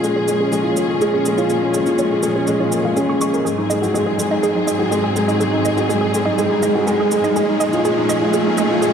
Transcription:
Already playing: string section A#2 F3 C#4 G#4, upright piano G#3 C#4 F4, riser
0.03 upright piano G#3, shaker
0.16 upright piano G#4, synth arpeggio sound C#5
0.28 upright piano G#3, shaker
0.40 upright piano C#4, synth arpeggio sound G#4
0.52 upright piano G#3, synth arpeggio sound G#4, shaker
0.64 upright piano F4
0.76 upright piano G#3, synth arpeggio sound C#5, shaker
0.88 upright piano G#4
1.01 upright piano G#3, synth arpeggio sound G#4, shaker
1.13 upright piano C#4, synth arpeggio sound G#4
1.25 upright piano G#3, shaker
1.38 upright piano F4, synth arpeggio sound C#5, shaker
1.50 upright piano G#3, shaker
1.62 upright piano C#4, synth arpeggio sound G#4
1.74 upright piano G#3, synth arpeggio sound G#4, shaker
1.86 upright piano F4, shaker
1.98 upright piano G#3, synth arpeggio sound C#5, shaker
2.11 upright piano G#4
2.23 upright piano G#3, synth arpeggio sound G#4, shaker
2.35 upright piano C#4, synth arpeggio sound G#4
2.47 upright piano G#3, shaker
2.60 upright piano F4, synth arpeggio sound C#5
2.72 upright piano A#3, shaker
2.84 upright piano G#3, synth arpeggio sound F5
2.97 upright piano C#4, synth arpeggio sound G#4, shaker
3.08 upright piano G#3, synth arpeggio sound C#6
3.21 upright piano G#3, synth arpeggio sound C#6, shaker
3.33 upright piano A#4, shaker
3.44 string section G#2 F#3 C4 G#4, upright piano G#3, synth arpeggio sound G#4, shaker
3.58 upright piano D#4
3.70 upright piano G#3, synth arpeggio sound D#5, shaker
3.82 upright piano F#4, shaker
3.94 upright piano G#3, synth arpeggio sound G#4, shaker
4.06 synth arpeggio sound G#4, upright piano G#4
4.18 upright piano G#3, shaker
4.31 upright piano D#4, synth arpeggio sound D#5
4.43 upright piano G#3, synth arpeggio sound G#4, shaker
4.55 upright piano D#4
4.67 upright piano G#3, synth arpeggio sound D#5, shaker
4.79 upright piano F#4
4.91 upright piano G#3, synth arpeggio sound G#4, shaker
5.04 upright piano G#4, synth arpeggio sound G#4
5.15 upright piano G#3, shaker
5.28 upright piano D#4, synth arpeggio sound D#5, shaker
5.40 upright piano G#3, synth arpeggio sound G#4, shaker
5.52 upright piano D#4
5.65 upright piano G#3, synth arpeggio sound D#5, shaker
5.77 upright piano F#4, shaker
5.89 upright piano G#3, synth arpeggio sound G#4, shaker
6.01 synth arpeggio sound G#4, upright piano G#4
6.14 upright piano G#3, shaker
6.25 upright piano D#4, synth arpeggio sound D#5
6.38 upright piano G#3, synth arpeggio sound G#4, shaker
6.50 upright piano D#4
6.62 upright piano G#3, synth arpeggio sound D#5, shaker
6.75 upright piano F#4
6.87 upright piano G#3, synth arpeggio sound G#4, shaker
6.99 upright piano G#4, synth arpeggio sound G#4
7.11 upright piano G#3, shaker
7.23 upright piano D#4, synth arpeggio sound D#5, shaker
7.35 string section A#2 F3 C#4 G#4, upright piano G#3, synth arpeggio sound G#4, shaker
7.49 upright piano D#4
7.60 upright piano G#3, synth arpeggio sound D#5, shaker
7.73 upright piano F4, shaker
7.85 upright piano G#3, synth arpeggio sound G#4, shaker
7.97 upright piano D#4
8.09 upright piano G#3, synth arpeggio sound D#5, shaker
8.21 upright piano F4
8.33 upright piano G#3, synth arpeggio sound G#4, shaker
8.46 upright piano D#4
8.58 upright piano G#3, synth arpeggio sound D#5, shaker
8.70 upright piano F4
8.82 upright piano G#3, synth arpeggio sound G#4, shaker

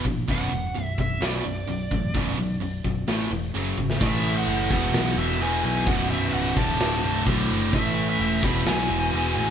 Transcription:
0.05 picked electric bass A#1, distorted electric guitar E2 B2, kick, open hi-hat
0.28 picked electric bass B0, distorted electric guitar B1 F#2 B2, lead electric guitar F#5, kick, open hi-hat
0.51 picked electric bass E1, distorted electric guitar B1 F#2, open hi-hat
0.74 picked electric bass B0, distorted electric guitar B1 F#2, open hi-hat
0.84 lead electric guitar E5
0.98 picked electric bass B0, distorted electric guitar B1 F#2, lead electric guitar E5, kick, open hi-hat
1.21 distorted electric guitar B1 F#2 B2, picked electric bass B1, lead electric guitar D5, snare, open hi-hat
1.45 picked electric bass B0, distorted electric guitar B1 F#2, open hi-hat
1.67 picked electric bass B0, distorted electric guitar B1 F#2, open hi-hat
1.91 picked electric bass A1, distorted electric guitar B1 F#2, kick, open hi-hat
2.14 picked electric bass B0, distorted electric guitar B1 F#2 B2, kick, open hi-hat
2.38 picked electric bass B1, distorted electric guitar B1 F#2, open hi-hat
2.60 picked electric bass B0, distorted electric guitar B1 F#2, open hi-hat
2.84 picked electric bass B0, distorted electric guitar B1 F#2, kick, open hi-hat
3.08 picked electric bass A1, distorted electric guitar A2 E3 A3, snare, open hi-hat
3.31 picked electric bass E1, distorted electric guitar A2 E3, open hi-hat
3.54 picked electric bass F#1, distorted electric guitar F#2 C#3 F#3, open hi-hat
3.78 picked electric bass G#1, distorted electric guitar F#2 C#3, kick
3.90 snare
3.99 picked electric bass A1, distorted electric guitar A2 E3 A3, lead electric guitar E5, kick, crash
4.24 crash
4.38 lead electric guitar F#5
4.47 picked electric bass F#1, crash
4.70 picked electric bass E1, distorted electric guitar E2 B2 E3, lead electric guitar F#5, kick, crash
4.94 picked electric bass B1, snare, crash
5.17 picked electric bass E1, lead electric guitar E5, crash
5.30 snare
5.39 picked electric bass E1, distorted electric guitar E2 B2 E3, lead electric guitar G#5, crash
5.64 picked electric bass B1, lead electric guitar G#5, crash
5.86 picked electric bass B0, distorted electric guitar B1 F#2 B2, lead electric guitar F#5, kick, crash
6.10 picked electric bass B0, lead electric guitar E5, crash
6.33 picked electric bass C#1, lead electric guitar F#5, crash
6.56 picked electric bass D1, distorted electric guitar D2 A2 D3, lead electric guitar A5, kick, crash
6.79 picked electric bass D1, snare, crash
7.03 picked electric bass B0, crash
7.26 picked electric bass B1, distorted electric guitar D2 A2 D3, kick, crash
7.49 picked electric bass F#1, crash
7.72 picked electric bass A1, distorted electric guitar A2 E3 A3, lead electric guitar E5, kick, crash
7.96 crash
8.10 lead electric guitar E5
8.19 picked electric bass E1, crash
8.42 picked electric bass E1, distorted electric guitar E2 B2 E3, lead electric guitar B5, kick, crash
8.66 picked electric bass B1, lead electric guitar G#5, snare, crash
8.89 picked electric bass E1, crash
9.12 picked electric bass E1, distorted electric guitar E2 B2 E3, crash
9.36 picked electric bass A1, lead electric guitar G#5, crash

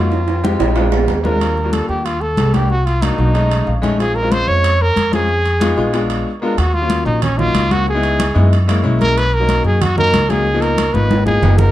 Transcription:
Already playing: upright bass F2, grand piano A#3 C#4 D#4 F#4, trumpet F4
0.12 high conga, high timbale
0.28 high conga, high timbale
0.43 grand piano G#3 C4 D#4 G4, high conga, high timbale
0.59 upright bass A#1, grand piano G#3 C4 D#4 G4, high conga, high timbale
0.75 grand piano G#3 C4 D4 F4, high conga, low timbale
0.92 high conga, low timbale
1.08 upright bass D#2, high conga, low timbale
1.23 grand piano G#3 C4 D4 F4, trumpet A#4, high conga, low timbale
1.40 grand piano G3 A#3 D4 F4, high conga, high timbale
1.58 high conga
1.64 grand piano G3 A#3 D4 F4
1.73 trumpet A4, high conga, high timbale
1.89 upright bass D#2, trumpet G4, high conga
2.06 trumpet F4, high conga, high timbale
2.21 trumpet A4, high conga
2.37 upright bass C2, high conga, high timbale, low timbale
2.53 grand piano G3 A#3 D4 G4, trumpet G4, high conga, high timbale
2.70 trumpet F#4, high conga
2.86 trumpet F4, high conga, high timbale
3.02 grand piano F#3 A#3 D4 D#4, trumpet D#4, high conga, high timbale
3.18 upright bass B1, grand piano F#3 A#3 D4 D#4, high conga
3.34 grand piano G#3 A3 C#4 D#4, high conga, high timbale
3.51 high conga, high timbale
3.67 upright bass A#1, grand piano F5, high conga
3.82 grand piano G#3 A3 C#4 D#4 G#5, high conga, high timbale
3.98 grand piano G#3 C4 C#4 F4, trumpet G#4, high conga, high timbale
4.16 trumpet A#4, high conga
4.22 grand piano G#3 C4 C#4 F4
4.32 trumpet C5, high conga, high timbale
4.48 upright bass F2, trumpet C#5, high conga
4.64 high conga, high timbale
4.81 trumpet A#4, high conga
4.96 upright bass F2, high conga, high timbale
5.11 grand piano G#3 C4 C#4 F4, trumpet G#4, high conga, high timbale
5.29 high conga
5.45 high conga, high timbale
5.60 grand piano G#3 B3 D#4 F4, high conga, high timbale
5.77 upright bass A#1, grand piano G#3 B3 D#4 F4, high conga
5.93 grand piano G#3 B3 D4 F4, high conga, high timbale
6.10 high conga, high timbale
6.42 grand piano G#3 B3 D4 F4, trumpet A#4
6.58 upright bass D#2, trumpet F#4, high conga, high timbale
6.74 trumpet F4, high conga
6.81 grand piano F#3 A#3 C#4 F4
6.90 high conga, high timbale
7.06 upright bass A#1, trumpet D#4, high conga
7.22 trumpet C#4, high conga, low conga, high timbale
7.38 grand piano F#3 A#3 C#4 D#4, trumpet F4, high conga, low conga
7.54 upright bass C#2, high conga, high timbale
7.71 grand piano F#3 A#3 C#4 F#4, trumpet F#4, high conga, high timbale
7.88 trumpet G#4, high conga
7.94 grand piano G#3 B3 D#4 E4
8.03 high conga, high timbale
8.20 high conga, high timbale
8.35 upright bass F#2, grand piano G#3 B3 D#4 E4, high conga
8.53 high conga, high timbale
8.68 grand piano G#3 A#3 C#4 E4, high conga, high timbale
8.83 upright bass B1, grand piano G#3 A#3 C#4 E4, high conga
9.01 trumpet A#4, high conga, high timbale
9.18 trumpet B4, high conga, high timbale
9.34 trumpet A#4, high conga
9.40 grand piano F#3 A#3 C#4 D#4
9.49 high conga, high timbale
9.64 upright bass F#2, trumpet G#4, high conga
9.81 trumpet F#4, high conga, low conga, high timbale
9.96 grand piano F#3 A#3 C#4 D#4, trumpet A#4, high conga, low conga
10.13 upright bass C#2, high conga, high timbale
10.29 grand piano F#3 A#3 C#4 D#4, trumpet G#4, high conga, high timbale
10.47 high conga
10.54 grand piano F3 A#3 B3 D#4
10.62 trumpet A#4, high conga, high timbale
10.78 high conga, high timbale
10.93 upright bass G#1, grand piano F3 A#3 B3 D#4, trumpet B4, high conga
11.11 high conga, high timbale
11.26 grand piano F3 A#3 B3 D#4, trumpet G#4, high conga
11.42 upright bass F#1, grand piano F3 A#3 B3 D#4, low conga, low timbale
11.58 trumpet A#4, low conga, low timbale

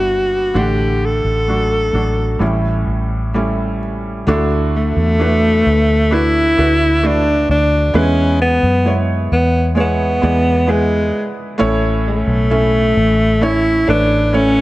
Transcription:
Already playing: fingered electric bass G1, felt piano G3 B3 D4 E4 F#4, alto saxophone F#4
0.54 fingered electric bass A1, felt piano A2 D3 A3 D4 F#5
0.59 alto saxophone G4
1.05 alto saxophone A4
1.24 fingered electric bass A1
1.47 felt piano F#3 A3 D4 F#4
1.93 fingered electric bass A1, felt piano F#3 A3 D4 F#4
2.39 fingered electric bass A1, felt piano A2 G3 A3 C#4 E4
2.87 fingered electric bass A1
3.34 felt piano G3 A3 C#4 E4
4.27 fingered electric bass D2, felt piano D3 A3 D4 E4 F#4 A4
4.76 alto saxophone A3
4.96 fingered electric bass E2
5.19 felt piano A3 D4 E4 F#4 B4
5.66 fingered electric bass D2
6.11 felt piano A3 D4 E4 F#4 B4, alto saxophone E4
6.57 fingered electric bass D2, felt piano A3 D4 E4 F#4 B4
7.03 felt piano A3 D4 E4 F#4 A4, alto saxophone D4
7.49 fingered electric bass D2, alto saxophone D4
7.93 fingered electric bass E2, felt piano E3 G#3 B3 E4 G#4 B4, alto saxophone C#4
8.42 alto saxophone B3
8.63 fingered electric bass F#2
8.85 felt piano G#3 B3 E4 G#4 C#5
9.32 fingered electric bass E2, alto saxophone B3
9.75 felt piano G#3 B3 E4 G#4 C#5
9.80 alto saxophone B3
10.21 fingered electric bass E2, felt piano G#3 B3 E4 G#4 D5
10.67 felt piano G#3 B3 E4 G#4 B4
10.72 alto saxophone G#3
11.58 fingered electric bass A1, felt piano A2 A3 C#4 E4 A4 C#5
12.08 alto saxophone A3
12.27 fingered electric bass B1
12.50 felt piano A3 C#4 E4 A4 E5
12.97 fingered electric bass A1
13.41 felt piano A3 C#4 E4 A4 C#5, alto saxophone E4
13.87 fingered electric bass A1, felt piano A3 E4 A4 B4 C#5, alto saxophone D4
14.32 felt piano A3 C#4 E4 A4 C#5, alto saxophone C#4

